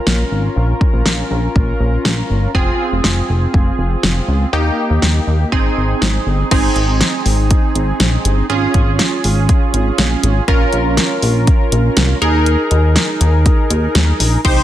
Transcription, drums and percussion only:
0.07 snare
0.81 kick
1.06 snare
1.56 kick
2.05 snare
2.55 kick
3.04 snare
3.54 kick
4.03 snare
5.02 snare
5.52 kick
6.02 snare
6.51 kick, closed hi-hat, crash
6.76 closed hi-hat
7.01 snare, closed hi-hat
7.26 open hi-hat
7.51 kick, closed hi-hat
7.75 closed hi-hat
8.00 snare, closed hi-hat
8.25 closed hi-hat
8.50 closed hi-hat
8.74 kick, closed hi-hat
8.99 snare, closed hi-hat
9.24 open hi-hat
9.49 kick, closed hi-hat
9.74 closed hi-hat
9.98 snare, closed hi-hat
10.23 closed hi-hat
10.48 kick, closed hi-hat
10.73 closed hi-hat
10.97 snare, closed hi-hat
11.22 open hi-hat
11.47 kick, closed hi-hat
11.72 closed hi-hat
11.97 snare, closed hi-hat
12.22 closed hi-hat
12.46 closed hi-hat
12.71 closed hi-hat
12.96 snare, closed hi-hat
13.21 closed hi-hat
13.46 kick, closed hi-hat
13.70 closed hi-hat
13.95 snare, closed hi-hat
14.20 open hi-hat
14.45 kick, closed hi-hat, crash

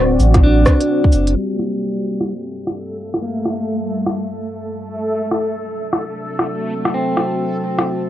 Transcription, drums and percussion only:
0.20 cabasa
0.34 kick, cross-stick, closed hi-hat
0.66 kick, cross-stick, cabasa
0.81 closed hi-hat
1.04 kick
1.12 cabasa
1.27 closed hi-hat
1.36 crash
1.59 cross-stick
2.21 cross-stick
2.67 cross-stick
3.14 cross-stick
3.46 cross-stick
4.06 cross-stick
5.31 cross-stick
5.93 cross-stick
6.39 cross-stick
6.85 cross-stick
7.17 cross-stick
7.79 cross-stick

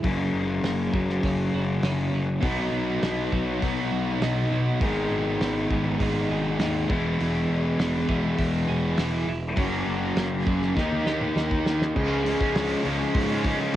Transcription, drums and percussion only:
0.04 kick, open hi-hat
0.63 snare, open hi-hat
0.93 kick
1.09 snare
1.23 kick, open hi-hat
1.83 snare, open hi-hat
2.43 kick, open hi-hat
3.03 snare, open hi-hat
3.32 kick
3.62 kick, open hi-hat
4.22 snare, open hi-hat
4.81 kick, open hi-hat
5.41 snare, open hi-hat
5.71 kick
6.00 kick, open hi-hat
6.59 snare, open hi-hat
6.90 kick
7.20 open hi-hat
7.79 snare, open hi-hat
8.09 kick
8.39 kick, open hi-hat
8.98 snare, open hi-hat
9.57 kick, open hi-hat
10.17 snare, open hi-hat
10.47 kick
10.62 snare
10.77 kick, snare
10.92 high tom
11.06 snare
11.21 mid tom
11.37 snare
11.51 kick
11.66 snare
11.82 snare
11.96 kick, crash
12.26 open hi-hat
12.40 kick
12.55 snare, open hi-hat
12.85 open hi-hat
13.14 kick, open hi-hat
13.44 kick, open hi-hat

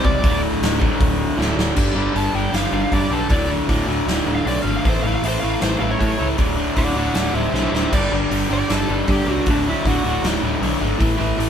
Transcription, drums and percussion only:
0.05 kick
0.24 kick, open hi-hat
0.63 snare, open hi-hat
0.82 kick
1.01 kick, open hi-hat
1.41 snare
1.59 snare
1.76 kick, crash
2.16 open hi-hat
2.54 snare, open hi-hat
2.92 kick, open hi-hat
3.29 kick, open hi-hat
3.69 kick, open hi-hat
4.08 snare, open hi-hat
4.47 open hi-hat
4.85 kick, open hi-hat
5.23 open hi-hat
5.61 snare, open hi-hat
6.01 kick, open hi-hat
6.38 kick, open hi-hat
6.76 kick, open hi-hat
7.14 snare, open hi-hat
7.55 snare
7.75 snare
7.93 kick, crash
8.31 open hi-hat
8.69 snare, open hi-hat
9.07 kick, open hi-hat
9.46 kick, open hi-hat
9.86 kick, open hi-hat
10.24 snare, open hi-hat
10.63 open hi-hat
11.00 kick, open hi-hat
11.40 open hi-hat

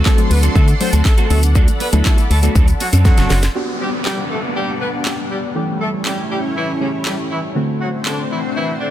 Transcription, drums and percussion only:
0.06 kick, snare, clap, shaker
0.18 closed hi-hat, shaker
0.31 open hi-hat, shaker
0.43 closed hi-hat, shaker
0.56 kick, shaker
0.68 closed hi-hat, shaker
0.81 open hi-hat, shaker
0.93 closed hi-hat, shaker
1.05 kick, snare, clap, shaker
1.18 closed hi-hat, shaker
1.30 open hi-hat, shaker
1.43 closed hi-hat, shaker
1.55 kick, shaker
1.68 closed hi-hat, shaker
1.80 open hi-hat, shaker
1.93 closed hi-hat, shaker
2.05 kick, snare, clap, shaker
2.18 closed hi-hat, shaker
2.31 open hi-hat, shaker
2.43 closed hi-hat, shaker
2.55 kick, shaker
2.68 closed hi-hat, shaker
2.80 open hi-hat, shaker
2.93 closed hi-hat, shaker
3.05 kick, snare, shaker
3.18 snare, closed hi-hat, shaker
3.30 snare, open hi-hat, shaker
3.43 snare, closed hi-hat, shaker
4.05 snare, clap
5.05 snare, clap
6.05 snare, clap
7.05 snare, clap
8.06 snare, clap

